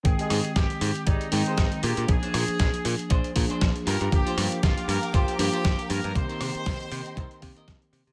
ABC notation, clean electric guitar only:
X:1
M:4/4
L:1/16
Q:"Swing 16ths" 1/4=118
K:Ablyd
V:1 name="Clean electric guitar"
z [GAe]3 z4 [GAd]2 z [GAc] z2 [DAB]2 | z [DAc]3 z4 [DAc]2 z [DAc] z2 [FGB]2 | z [FGc]3 z4 [FGc]2 z [FGc] z4 | z [EBc]3 z4 [EBc]2 z [EBe] z4 |]